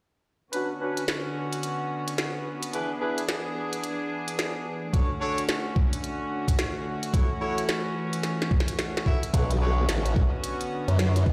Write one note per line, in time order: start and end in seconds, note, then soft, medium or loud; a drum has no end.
0.52 2.71 D3 medium
0.52 4.89 B3 medium
0.52 2.71 C#4 medium
0.52 0.70 C#4 medium
0.52 0.70 D4 medium
0.52 2.71 F#4 medium
0.52 0.70 F#4 medium
0.52 0.70 B4 medium
0.52 closed hi-hat medium
0.81 1.04 C#4 medium
0.81 1.04 D4 medium
0.81 1.04 F#4 medium
0.81 1.04 B4 loud
0.97 closed hi-hat medium
1.08 snare loud
1.08 closed hi-hat medium
1.53 closed hi-hat medium
1.63 closed hi-hat medium
2.08 closed hi-hat medium
2.18 snare loud
2.18 closed hi-hat medium
2.63 closed hi-hat medium
2.73 4.91 E3 medium
2.73 2.90 D4 medium
2.73 4.91 D4 medium
2.73 2.90 E4 medium
2.73 2.90 G#4 medium
2.73 4.92 G#4 medium
2.73 2.90 B4 medium
2.73 closed hi-hat medium
3.01 3.24 D4 medium
3.01 3.24 E4 medium
3.01 3.24 G#4 medium
3.01 3.24 B4 loud
3.18 closed hi-hat medium
3.29 snare loud
3.29 closed hi-hat medium
3.73 closed hi-hat medium
3.84 closed hi-hat medium
4.28 closed hi-hat medium
4.39 snare loud
4.39 closed hi-hat medium
4.93 7.12 D3 medium
4.93 9.30 A3 medium
4.93 7.12 C#4 medium
4.93 5.10 D4 medium
4.93 5.10 F#4 medium
4.93 9.30 F#4 medium
4.93 5.10 A4 medium
4.93 5.10 C#5 medium
4.93 kick loud
4.93 closed hi-hat medium
5.21 5.44 D4 loud
5.21 5.45 F#4 medium
5.21 5.44 A4 medium
5.21 5.44 C#5 loud
5.38 closed hi-hat medium
5.49 snare loud
5.49 closed hi-hat medium
5.76 kick loud
5.93 closed hi-hat medium
6.04 closed hi-hat medium
6.48 kick medium
6.48 closed hi-hat medium
6.59 snare loud
6.59 closed hi-hat medium
7.03 closed hi-hat medium
7.14 9.32 E3 medium
7.14 9.32 C#4 medium
7.14 7.31 E4 medium
7.14 7.31 F#4 medium
7.14 7.31 A4 medium
7.14 7.31 C#5 medium
7.14 kick loud
7.14 closed hi-hat medium
7.41 7.65 E4 loud
7.41 7.65 F#4 medium
7.41 7.65 A4 medium
7.41 7.65 C#5 loud
7.58 closed hi-hat medium
7.69 snare loud
7.69 closed hi-hat soft
8.13 closed hi-hat medium
8.23 snare medium
8.23 closed hi-hat medium
8.42 snare medium
8.51 kick loud
8.60 snare medium
8.68 closed hi-hat medium
8.79 snare medium
8.79 closed hi-hat soft
8.97 snare medium
9.06 9.23 E4 medium
9.06 9.23 F#4 medium
9.06 9.23 A4 medium
9.06 9.23 E5 loud
9.06 kick medium
9.23 closed hi-hat medium
9.33 9.87 B1 medium
9.33 11.33 D3 medium
9.33 11.33 B3 medium
9.33 11.33 C#4 medium
9.33 9.51 D4 medium
9.33 11.33 F#4 medium
9.33 9.51 F#4 medium
9.33 9.51 B4 medium
9.33 9.51 C#5 medium
9.33 kick loud
9.33 closed hi-hat medium
9.51 closed hi-hat medium
9.61 9.85 D4 loud
9.61 9.85 F#4 medium
9.61 9.85 B4 medium
9.61 9.85 C#5 loud
9.89 10.30 A1 loud
9.89 snare loud
9.89 closed hi-hat medium
10.06 closed hi-hat medium
10.16 kick loud
10.44 closed hi-hat medium
10.61 closed hi-hat medium
10.88 11.25 F#2 loud
10.88 closed hi-hat soft
10.99 snare loud
10.99 closed hi-hat medium
11.16 snare soft
11.16 closed hi-hat medium
11.26 11.33 B1 medium
11.26 kick loud